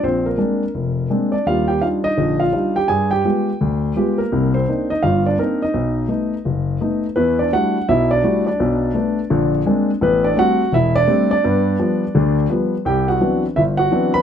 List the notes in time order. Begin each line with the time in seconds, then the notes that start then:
0.03 A#1 C4 C5
0.26 A#3 A#4
0.38 G#3 A#3 C4 D4
0.75 F1
1.10 G#3 A#3 C4 D4
1.32 D4 D5
1.47 D#2 G3 F4 F5
1.68 G4 G5
1.82 G3 D4 D#4 F4 F5
2.04 D#4 D#5
2.17 A#1 D3
2.40 F4 F5
2.53 G3 D4 D#4 F4
2.76 G4 G5
2.88 G2 G#4 G#5
3.11 G4 G5
3.25 G#3 B3 F4 G4
3.61 D2
3.96 G#3 B3 F4 G4
4.18 A#3 A#4
4.32 C2 C3
4.54 C4 C5
4.68 A#3 C4 D4 D#4
4.90 D#4 D#5
5.03 G1 G2 F4 F5
5.26 D4 D5
5.38 A#3 C4 D4 D#4 A#4
5.62 D#4 D#5
5.74 B1
6.08 A3 B3 D#4
6.45 F#1
6.81 A3 B3 D#4
7.16 E2 E3 B3 B4
7.39 D4 D5
7.53 G3 A3 D4 E4 F#4 F#5
7.88 B1 B2 E4 E5
8.11 D4 D5
8.24 G3 A3 D4 E4 F#4
8.46 D4 D5
8.60 B1 B2
8.95 A3 B3 D4
9.30 A#1 D3
9.66 G#3 A#3 C4 D4
10.01 A1 B3 B4
10.24 D4 D5
10.37 G3 A3 C4 F#4 F#5
10.72 E1 E4 E5
10.96 D4 D5
11.08 G3 A3 C4
11.31 D4 D5
11.44 G2 B3
11.79 F3 G3 B3
12.15 D2 D3
12.50 F3 G3 B3
12.85 C2 G4 G5
13.08 F#4 F#5
13.20 E3 F#3 B3 C4 D4
13.56 G1 E4 E5
13.77 F#4 F#5
13.91 E3 F#3 B3 C4 D4
14.14 B4 B5